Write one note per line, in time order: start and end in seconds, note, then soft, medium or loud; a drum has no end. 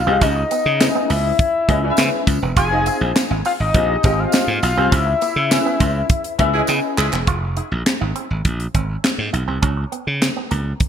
0.00 0.24 F5 loud
0.07 0.17 C2 medium
0.07 0.22 C4 medium
0.07 0.17 C4 medium
0.07 0.22 F4 medium
0.07 0.22 G4 medium
0.07 0.22 G#4 medium
0.07 0.22 D#5 medium
0.22 0.43 C#2 loud
0.22 0.32 C#4 medium
0.22 1.12 D#5 medium
0.22 kick loud
0.22 closed hi-hat medium
0.22 tambourine medium
0.36 muted clean electric guitar stroke soft
0.51 0.62 B3 medium
0.51 closed hi-hat medium
0.51 tambourine medium
0.66 0.87 C#3 medium
0.80 1.30 C#4 medium
0.80 1.30 E4 medium
0.80 1.30 G#4 medium
0.80 1.30 B4 medium
0.80 1.30 D#5 medium
0.80 muted clean electric guitar stroke soft
0.80 snare loud
0.80 clap medium
0.80 closed hi-hat medium
0.80 tambourine medium
0.95 1.06 B3 medium
1.10 1.31 C#2 medium
1.10 1.20 A#3 medium
1.10 2.28 E5 medium
1.10 open hi-hat medium
1.10 tambourine medium
1.39 kick loud
1.39 closed hi-hat medium
1.68 1.90 C#2 loud
1.68 1.79 A#3 medium
1.68 1.77 C#4 medium
1.68 1.77 E4 medium
1.68 1.77 G#4 medium
1.68 1.77 B4 medium
1.68 1.77 D#5 loud
1.68 kick loud
1.68 closed hi-hat medium
1.83 2.33 C#4 medium
1.83 2.33 E4 medium
1.83 2.33 G#4 medium
1.83 2.33 B4 medium
1.83 1.90 D5 medium
1.90 2.37 E5 loud
1.97 2.09 C#3 loud
1.97 2.08 G#3 medium
1.97 snare loud
1.97 clap medium
1.97 closed hi-hat medium
1.97 tambourine medium
2.27 2.38 C#2 medium
2.27 muted clean electric guitar stroke soft
2.27 kick loud
2.27 closed hi-hat medium
2.27 tambourine medium
2.42 2.53 E1 medium
2.42 2.53 B3 medium
2.56 2.88 F1 loud
2.56 2.67 F4 loud
2.56 3.12 G#5 loud
2.56 kick loud
2.56 closed hi-hat medium
2.56 tambourine soft
2.71 3.29 C4 medium
2.71 3.30 D#4 medium
2.71 3.29 F4 medium
2.71 3.30 G#4 medium
2.71 3.30 D#5 medium
2.71 muted clean electric guitar stroke soft
2.86 2.97 D#4 medium
2.86 closed hi-hat medium
2.86 tambourine medium
3.01 3.12 A#1 medium
3.16 muted clean electric guitar stroke soft
3.16 snare loud
3.16 clap medium
3.16 closed hi-hat medium
3.16 tambourine medium
3.30 3.41 G#1 medium
3.30 3.41 D#4 medium
3.45 3.56 C4 medium
3.45 3.52 F5 loud
3.45 open hi-hat medium
3.45 tambourine medium
3.60 3.70 G#1 medium
3.60 4.21 D#5 loud
3.74 3.96 A#1 loud
3.74 3.91 C4 medium
3.74 3.91 F4 medium
3.74 3.91 G4 medium
3.74 3.91 G#4 medium
3.74 3.91 D#5 medium
3.74 kick loud
3.74 closed hi-hat medium
4.03 4.25 G#1 medium
4.03 4.45 C4 medium
4.03 4.15 C4 medium
4.03 4.45 F4 medium
4.03 4.45 G4 medium
4.03 4.45 G#4 medium
4.03 4.46 D#5 loud
4.03 kick loud
4.03 closed hi-hat medium
4.03 tambourine soft
4.19 4.63 F5 loud
4.32 muted clean electric guitar stroke soft
4.32 snare loud
4.32 clap medium
4.32 closed hi-hat medium
4.32 tambourine medium
4.48 4.58 G#2 medium
4.63 4.73 B1 loud
4.63 4.73 D#4 medium
4.63 4.95 F5 loud
4.63 closed hi-hat medium
4.63 tambourine medium
4.77 4.88 C2 medium
4.77 4.92 C4 medium
4.77 4.88 C4 medium
4.77 4.92 F4 medium
4.77 4.92 G4 medium
4.77 4.92 G#4 medium
4.77 4.92 C5 medium
4.92 5.13 C#2 loud
4.92 5.03 C#4 medium
4.92 6.69 E5 loud
4.92 kick loud
4.92 closed hi-hat medium
4.92 tambourine soft
5.07 muted clean electric guitar stroke soft
5.21 5.32 A#3 medium
5.21 closed hi-hat medium
5.21 tambourine medium
5.36 5.57 C#3 medium
5.51 6.01 C#4 medium
5.51 6.01 E4 medium
5.51 6.01 G#4 medium
5.51 6.01 B4 medium
5.51 6.01 E5 medium
5.51 muted clean electric guitar stroke soft
5.51 snare loud
5.51 clap medium
5.51 closed hi-hat medium
5.51 tambourine medium
5.66 5.76 B3 medium
5.80 6.01 C#2 medium
5.80 5.91 G#3 medium
5.80 kick loud
5.80 closed hi-hat medium
5.80 tambourine medium
6.10 kick loud
6.10 closed hi-hat medium
6.24 closed hi-hat medium
6.39 6.60 C#2 medium
6.39 6.50 A#3 medium
6.39 6.47 C#4 loud
6.39 6.47 E4 medium
6.39 6.47 G#4 loud
6.39 6.47 B4 medium
6.39 6.48 E5 loud
6.39 kick loud
6.39 closed hi-hat medium
6.54 6.63 G#3 loud
6.54 7.04 C#4 medium
6.54 6.63 E4 loud
6.54 7.04 E4 medium
6.54 6.63 G#4 loud
6.54 7.04 G#4 medium
6.54 7.04 B4 medium
6.54 7.04 D#5 loud
6.67 6.79 C#3 loud
6.67 6.79 B3 medium
6.67 clap medium
6.67 tambourine medium
6.98 7.08 C#2 medium
6.98 7.17 G#3 loud
6.98 7.17 E4 medium
6.98 7.17 G#4 loud
6.98 muted clean electric guitar stroke soft
6.98 clap loud
6.98 tambourine medium
7.13 7.23 E1 medium
7.13 7.23 B3 medium
7.13 clap medium
7.27 7.59 F1 medium
7.27 7.38 F4 medium
7.27 kick loud
7.27 closed hi-hat medium
7.42 muted clean electric guitar stroke soft
7.57 7.67 D#4 medium
7.57 closed hi-hat medium
7.72 7.82 A#1 medium
7.86 muted clean electric guitar stroke soft
7.86 snare loud
7.86 clap medium
7.86 closed hi-hat medium
8.01 8.12 G#1 medium
8.01 8.11 D#4 medium
8.16 8.26 C4 medium
8.16 closed hi-hat medium
8.30 8.41 G#1 medium
8.45 8.66 A#1 medium
8.45 kick loud
8.45 closed hi-hat medium
8.60 closed hi-hat medium
8.74 8.96 G#1 medium
8.74 8.85 C4 medium
8.74 kick medium
8.74 closed hi-hat medium
9.04 muted clean electric guitar stroke soft
9.04 snare loud
9.04 clap medium
9.04 closed hi-hat medium
9.18 9.29 G#2 medium
9.33 9.44 B1 medium
9.33 9.43 D#4 medium
9.33 closed hi-hat medium
9.48 9.58 C2 medium
9.48 9.58 C4 medium
9.62 9.84 C#2 loud
9.62 9.73 C#4 medium
9.62 kick loud
9.62 closed hi-hat medium
9.77 muted clean electric guitar stroke soft
9.92 10.02 B3 medium
9.92 closed hi-hat medium
10.07 10.28 C#3 medium
10.21 muted clean electric guitar stroke soft
10.21 snare loud
10.21 clap medium
10.21 closed hi-hat medium
10.36 10.47 B3 medium
10.51 10.72 C#2 medium
10.51 10.61 A#3 medium
10.51 closed hi-hat medium
10.80 kick medium
10.80 closed hi-hat medium